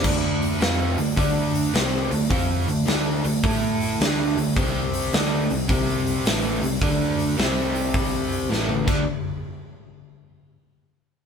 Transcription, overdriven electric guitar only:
X:1
M:4/4
L:1/8
Q:"Swing" 1/4=106
K:Clyd
V:1 name="Overdriven electric guitar"
[D,A,D]2 [=F,C=F] [D,A,] [D,A,D]2 [C,G,C] [D,A,] | [=F,C=F] [D,A,] [D,A,D] [D,A,] [A,EA]2 [D,A,D] [D,A,] | [C,G,C]2 [D,A,D] [C,G,] [C,G,C]2 [A,,E,A,] [C,G,] | [D,A,D]2 [C,G,C]4 [A,,E,A,] [D,A,D] |
z8 |]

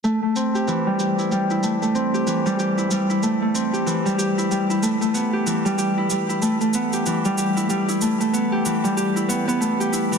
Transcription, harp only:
X:1
M:4/4
L:1/16
Q:"Swing 16ths" 1/4=94
K:Am
V:1 name="Harp"
A, A, C G E, G, G E G, E A, A, C G E, G, | G E G, E A, A, C G E, G, G E G, E A, A, | B, G E, G, G E G, E A, A, B, G E, G, G E | G, E A, A, B, G E, G, G E B, B, A, G E E, |]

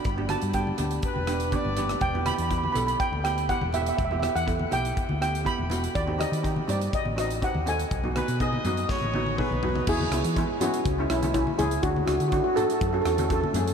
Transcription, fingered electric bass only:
X:1
M:4/4
L:1/16
Q:1/4=122
K:Em
V:1 name="Fingered electric bass" clef=bass
G,,,3 G,,3 D,,2 z E,,,4 G,,,3 | E,,,3 E,,3 B,,,2 z D,,4 E,,,3 | E,,,3 E,,3 B,,,2 z D,,4 E,,,3 | _E,,3 _E,3 G,,2 z A,,,4 E,,3 |
B,,,3 B,,3 F,,2 z A,,,4 B,,,3 | [K:Emix] E,,2 C,, E,2 z3 C,,2 B,,,4 C,,2 | D,,2 C,, D,2 z3 F,,2 E,,4 F,,2 |]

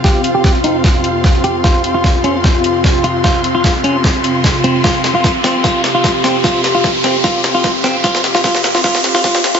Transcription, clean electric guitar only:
X:1
M:4/4
L:1/16
Q:1/4=150
K:Cphr
V:1 name="Clean electric guitar"
G2 z G2 z E z6 z G z | F2 z F2 z D z6 z F z | F2 z F2 z D z6 z C z | F2 z F2 z C z F2 z F2 z C z |
F2 z F2 z C z F2 z F2 z C z | F2 z F F2 z F F2 z F F2 z F |]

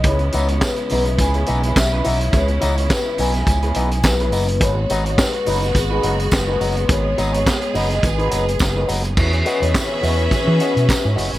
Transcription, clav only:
X:1
M:4/4
L:1/16
Q:"Swing 16ths" 1/4=105
K:E
V:1 name="Clav"
C, z [E,B,D] z C, z [E,B,D] [B,D] [B,D] C, [E,B,D] z3 [E,B,D] z | C, z [E,B,D] [B,D] C, z [E,B,D] [B,D] [B,D] C, [E,B,D] z [B,D] C, [E,B,D] z | [G,,D,] z [F,B,D] [B,D] [G,,D,] z [F,B,D] [B,D] [B,D] [G,,D,] [F,B,D] z [B,D] [G,,D,] [F,B,D] z | [G,,D,] z [F,B,D] [B,D] [G,,D,] z [F,B,D] [B,D] [B,D] [G,,D,] [F,B,D] z [B,D] [G,,D,] [F,B,D] z |
E, z [G,CF] [CF] E, z [G,CF] [CF] [CF] E, [G,CF] z [CF] E, [G,CF] z |]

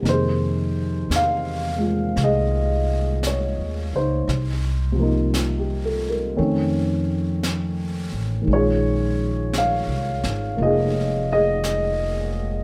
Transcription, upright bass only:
X:1
M:4/4
L:1/8
Q:"Swing" 1/4=57
K:Bbm
V:1 name="Upright bass" clef=bass
F,,2 =E,,2 C,,2- (3C,, _E,, D,, | C,,4 F,,3 =A,,, | B,,,2- (3B,,, C,, A,,, F,,,4 |]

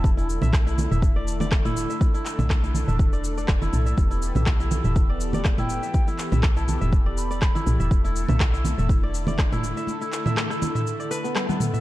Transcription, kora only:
X:1
M:4/4
L:1/16
Q:"Swing 16ths" 1/4=122
K:Dmix
V:1 name="Kora"
z E z e z E z e z d z d z E z e | z E z e z E z e z d z d z E z e | z E z e z E z e z d z d z E z e | z E z e z E z e z d z d z E z e |
z E z e z E z e z d z d z E z e | z E z e z E z e z d B B, z B, z e |]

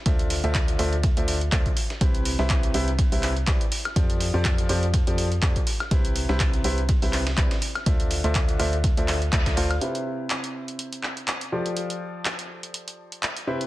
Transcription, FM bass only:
X:1
M:4/4
L:1/16
Q:"Swing 16ths" 1/4=123
K:C
V:1 name="FM bass" clef=bass
D,,3 D,,3 D,,3 D,,3 D,, z3 | C,,3 C,,3 C,,3 C,,3 C,, z3 | F,,3 F,,3 F,,3 F,,3 F,, z3 | C,,3 C,,3 C,,3 C,,3 C,, z3 |
D,,3 D,,3 D,,3 D,,3 D,,2 D,,2 | z16 | z16 |]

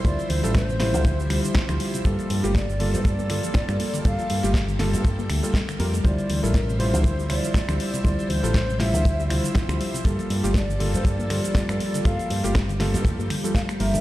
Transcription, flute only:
X:1
M:4/4
L:1/16
Q:"Swing 16ths" 1/4=120
K:Gdor
V:1 name="Flute"
d2 c2 c8- c2 z2 | z4 d3 c d8 | f4 z12 | d3 B3 c2 c2 d6 |
d2 c4 e4 z6 | z4 d3 c d8 | f4 z8 f2 e2 |]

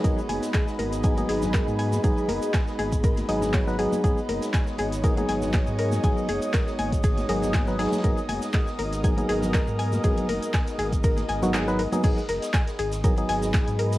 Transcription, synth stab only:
X:1
M:4/4
L:1/16
Q:"Swing 16ths" 1/4=120
K:G#m
V:1 name="Synth stab"
[F,B,DG] z6 z [F,B,DG] [F,B,DG]6- [F,B,DG] | [F,B,DG]2 z8 [F,B,DG]3 [F,B,DB] [F,B,DG]2 | [F,B,DG] z6 z [F,B,DG] [F,B,DG]6- [F,B,DG] | [F,B,DG]2 z8 [F,B,DG]3 [F,B,DB] [F,B,DG]2 |
[F,B,DG] z6 z [F,B,DG] [F,B,DG]6- [F,B,DG] | [F,B,DG]2 z8 z [F,B,DF] [F,B,DG] [F,B,DB] z [F,B,DG] | [B,DG] z6 z [F,B,DG] [F,B,DG]6- [F,B,DG] |]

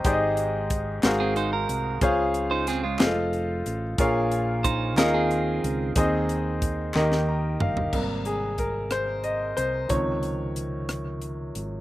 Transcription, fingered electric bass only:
X:1
M:6/8
L:1/8
Q:3/8=61
K:Ab
V:1 name="Fingered electric bass" clef=bass
A,,,3 A,,,2 C,, | D,,3 F,,,2 =A,,, | B,,,3 E,,2 D,, | E,,3 E,,2 G,,, |
A,,,4- A,,, C,, | D,,4- D,, A,,, |]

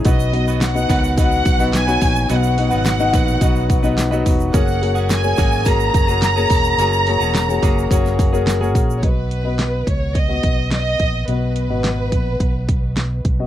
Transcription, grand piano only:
X:1
M:4/4
L:1/16
Q:1/4=107
K:B
V:1 name="Grand piano"
[B,DFd]2 [B,DFd]2 z [B,DFd]2 z [B,DFd]2 z [B,DFd]2 [B,DFc]2 z | [B,DFd]2 [B,DFd]2 z [B,DFd]2 z [B,DFd]2 z [B,DFd]2 [B,DFd]2 z | [A,FGc]2 [A,FGc]2 z [A,FGc]2 z [A,FGc]2 z [A,FGc]2 [A,FGc]2 z | [A,FGc]2 [A,FGc]2 z [A,FGc]2 z [A,FGc]2 z [A,FGc]2 [A,FGA]2 z |
[B,Fd]2 z [B,Fd]4- [B,Fd] z [B,Fd]6 z | [B,Fd]2 z [B,Fd]6- [B,Fd] z4 z [B,Fd] |]
V:2 name="Grand piano" clef=bass
B,,6 z8 z2 | B,,6 z8 z2 | z16 | z16 |
B,,6 z8 z2 | B,,6 z8 z2 |]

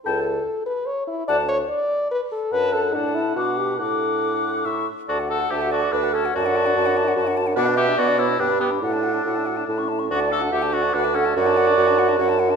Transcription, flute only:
X:1
M:3/4
L:1/16
Q:1/4=144
K:D
V:1 name="Flute"
a2 z8 z2 | a2 z8 z2 | a4 a4 d'4 | d'8 c'2 z2 |
a f a f a f a f a f a f | a f a f a f a f a f a f | f d f d f d f d g b g b | f a f a f a f a a c' a c' |
f a f a f a f a f a f a | f a f a f a f a f a f a |]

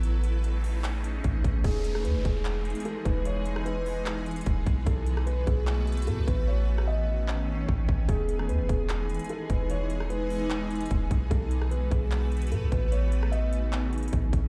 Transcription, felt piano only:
X:1
M:4/4
L:1/8
Q:1/4=149
K:E
V:1 name="Felt piano"
z8 | G2 B G3 A B | c2 B2 z4 | A2 B G3 A B |
c2 d2 z4 | G2 B G3 A B | c2 B2 z4 | A2 B G3 A B |
c2 d2 z4 |]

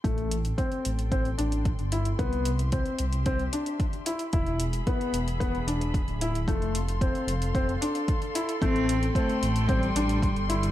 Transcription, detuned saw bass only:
X:1
M:4/4
L:1/16
Q:1/4=112
K:Am
V:1 name="Detuned saw bass" clef=bass
A,,,4 z2 A,,,4 A,,,3 G,,,3 | C,,4- C,, z C,,4 z6 | E,,,4 z2 E,,,4 E,,,3 D,,,3 | F,,,4- F,,, z F,,,4 z6 |
A,,,4 z2 A,,,4 A,,,3 G,,,3 |]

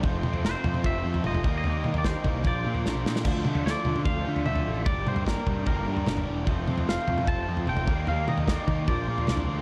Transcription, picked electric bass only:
X:1
M:4/4
L:1/16
Q:1/4=149
K:Dm
V:1 name="Picked electric bass" clef=bass
F,,,2 F,,2 F,,, z F,,2 F,,,2 F,,2 F,,,2 _E,,2 | _E,,2 _E,2 E,, z C,,2 B,,,2 B,,2 B,,,2 B,,2 | D,,2 D,2 D,, z D,2 D,,2 D,2 D,,2 A,,,2 | G,,,2 G,,2 G,,, z G,,2 G,,,2 G,,2 G,,,2 E,,,2 |
F,,,2 F,,2 F,,, z F,,2 F,,,2 F,,2 F,,,2 _E,,2 | _E,,2 _E,2 E,, z E,2 B,,,2 B,,2 C,,2 D,,2 |]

